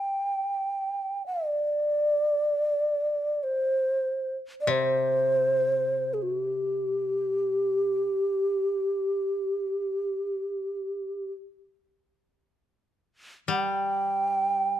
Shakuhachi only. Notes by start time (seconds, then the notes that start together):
Already playing: G5
1.26 D5
3.43 C5
4.61 D5
4.70 C5
6.14 G#4
6.22 F#4
6.39 G4
13.50 G5